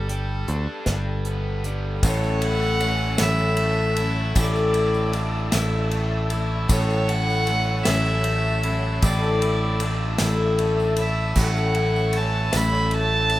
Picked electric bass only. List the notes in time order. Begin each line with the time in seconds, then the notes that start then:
Already playing: G1
0.48 D2
0.87 G1
2.03 A1
3.20 A1
4.36 A1
5.54 A1
6.69 A1
7.87 A1
9.03 A1
10.20 A1
11.36 A1
12.54 A1